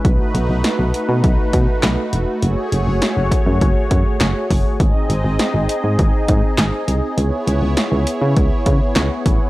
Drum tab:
HH |xxxxxxxx|xxxxxxxo|xxxxxxxx|xxxxxxxx|
CP |------x-|------x-|------x-|------x-|
SD |--o---o-|--o---o-|--o---o-|--o---o-|
BD |o---oo--|---ooo-o|o---oo--|----oo-o|